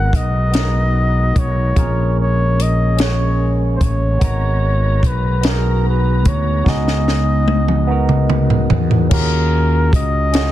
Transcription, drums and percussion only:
0, 0, Header, 1, 2, 480
1, 0, Start_track
1, 0, Key_signature, -6, "minor"
1, 0, Tempo, 816327
1, 1038, Time_signature, 6, 3, 24, 8
1, 6184, End_track
2, 0, Start_track
2, 0, Title_t, "Drums"
2, 77, Note_on_c, 9, 36, 85
2, 86, Note_on_c, 9, 42, 74
2, 135, Note_off_c, 9, 36, 0
2, 145, Note_off_c, 9, 42, 0
2, 315, Note_on_c, 9, 42, 71
2, 323, Note_on_c, 9, 38, 102
2, 374, Note_off_c, 9, 42, 0
2, 381, Note_off_c, 9, 38, 0
2, 799, Note_on_c, 9, 36, 98
2, 800, Note_on_c, 9, 42, 59
2, 858, Note_off_c, 9, 36, 0
2, 858, Note_off_c, 9, 42, 0
2, 1037, Note_on_c, 9, 36, 99
2, 1038, Note_on_c, 9, 42, 78
2, 1096, Note_off_c, 9, 36, 0
2, 1097, Note_off_c, 9, 42, 0
2, 1528, Note_on_c, 9, 42, 77
2, 1586, Note_off_c, 9, 42, 0
2, 1756, Note_on_c, 9, 42, 72
2, 1763, Note_on_c, 9, 38, 101
2, 1815, Note_off_c, 9, 42, 0
2, 1822, Note_off_c, 9, 38, 0
2, 2239, Note_on_c, 9, 36, 95
2, 2241, Note_on_c, 9, 42, 63
2, 2298, Note_off_c, 9, 36, 0
2, 2300, Note_off_c, 9, 42, 0
2, 2478, Note_on_c, 9, 36, 109
2, 2479, Note_on_c, 9, 42, 74
2, 2536, Note_off_c, 9, 36, 0
2, 2538, Note_off_c, 9, 42, 0
2, 2957, Note_on_c, 9, 36, 90
2, 2965, Note_on_c, 9, 42, 77
2, 3016, Note_off_c, 9, 36, 0
2, 3024, Note_off_c, 9, 42, 0
2, 3196, Note_on_c, 9, 42, 76
2, 3203, Note_on_c, 9, 38, 108
2, 3254, Note_off_c, 9, 42, 0
2, 3262, Note_off_c, 9, 38, 0
2, 3678, Note_on_c, 9, 42, 64
2, 3679, Note_on_c, 9, 36, 99
2, 3736, Note_off_c, 9, 42, 0
2, 3738, Note_off_c, 9, 36, 0
2, 3917, Note_on_c, 9, 36, 101
2, 3923, Note_on_c, 9, 38, 53
2, 3976, Note_off_c, 9, 36, 0
2, 3982, Note_off_c, 9, 38, 0
2, 4043, Note_on_c, 9, 38, 49
2, 4102, Note_off_c, 9, 38, 0
2, 4163, Note_on_c, 9, 38, 60
2, 4222, Note_off_c, 9, 38, 0
2, 4396, Note_on_c, 9, 48, 74
2, 4455, Note_off_c, 9, 48, 0
2, 4518, Note_on_c, 9, 47, 61
2, 4577, Note_off_c, 9, 47, 0
2, 4756, Note_on_c, 9, 45, 68
2, 4815, Note_off_c, 9, 45, 0
2, 4878, Note_on_c, 9, 45, 90
2, 4937, Note_off_c, 9, 45, 0
2, 4999, Note_on_c, 9, 43, 78
2, 5058, Note_off_c, 9, 43, 0
2, 5116, Note_on_c, 9, 43, 100
2, 5175, Note_off_c, 9, 43, 0
2, 5238, Note_on_c, 9, 43, 81
2, 5297, Note_off_c, 9, 43, 0
2, 5356, Note_on_c, 9, 49, 110
2, 5358, Note_on_c, 9, 36, 119
2, 5415, Note_off_c, 9, 49, 0
2, 5417, Note_off_c, 9, 36, 0
2, 5838, Note_on_c, 9, 36, 98
2, 5846, Note_on_c, 9, 42, 84
2, 5897, Note_off_c, 9, 36, 0
2, 5905, Note_off_c, 9, 42, 0
2, 6078, Note_on_c, 9, 42, 81
2, 6085, Note_on_c, 9, 38, 117
2, 6137, Note_off_c, 9, 42, 0
2, 6144, Note_off_c, 9, 38, 0
2, 6184, End_track
0, 0, End_of_file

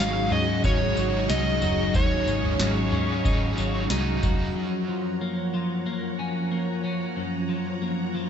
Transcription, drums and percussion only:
0, 0, Header, 1, 2, 480
1, 0, Start_track
1, 0, Key_signature, -6, "major"
1, 0, Tempo, 652174
1, 1436, Time_signature, 4, 2, 24, 8
1, 6105, End_track
2, 0, Start_track
2, 0, Title_t, "Drums"
2, 230, Note_on_c, 9, 43, 67
2, 304, Note_off_c, 9, 43, 0
2, 469, Note_on_c, 9, 43, 65
2, 469, Note_on_c, 9, 54, 62
2, 471, Note_on_c, 9, 36, 93
2, 543, Note_off_c, 9, 43, 0
2, 543, Note_off_c, 9, 54, 0
2, 544, Note_off_c, 9, 36, 0
2, 714, Note_on_c, 9, 54, 59
2, 788, Note_off_c, 9, 54, 0
2, 953, Note_on_c, 9, 38, 120
2, 954, Note_on_c, 9, 54, 93
2, 1027, Note_off_c, 9, 38, 0
2, 1028, Note_off_c, 9, 54, 0
2, 1191, Note_on_c, 9, 43, 68
2, 1191, Note_on_c, 9, 54, 66
2, 1264, Note_off_c, 9, 43, 0
2, 1264, Note_off_c, 9, 54, 0
2, 1430, Note_on_c, 9, 43, 112
2, 1430, Note_on_c, 9, 54, 68
2, 1432, Note_on_c, 9, 36, 115
2, 1504, Note_off_c, 9, 43, 0
2, 1504, Note_off_c, 9, 54, 0
2, 1506, Note_off_c, 9, 36, 0
2, 1674, Note_on_c, 9, 54, 68
2, 1748, Note_off_c, 9, 54, 0
2, 1794, Note_on_c, 9, 43, 77
2, 1868, Note_off_c, 9, 43, 0
2, 1910, Note_on_c, 9, 38, 115
2, 1911, Note_on_c, 9, 54, 77
2, 1984, Note_off_c, 9, 38, 0
2, 1984, Note_off_c, 9, 54, 0
2, 2150, Note_on_c, 9, 43, 73
2, 2223, Note_off_c, 9, 43, 0
2, 2393, Note_on_c, 9, 36, 96
2, 2394, Note_on_c, 9, 43, 65
2, 2394, Note_on_c, 9, 54, 66
2, 2466, Note_off_c, 9, 36, 0
2, 2467, Note_off_c, 9, 43, 0
2, 2467, Note_off_c, 9, 54, 0
2, 2632, Note_on_c, 9, 54, 62
2, 2705, Note_off_c, 9, 54, 0
2, 2870, Note_on_c, 9, 38, 120
2, 2871, Note_on_c, 9, 54, 98
2, 2944, Note_off_c, 9, 38, 0
2, 2945, Note_off_c, 9, 54, 0
2, 3112, Note_on_c, 9, 43, 69
2, 3112, Note_on_c, 9, 54, 74
2, 3114, Note_on_c, 9, 36, 103
2, 3186, Note_off_c, 9, 43, 0
2, 3186, Note_off_c, 9, 54, 0
2, 3188, Note_off_c, 9, 36, 0
2, 6105, End_track
0, 0, End_of_file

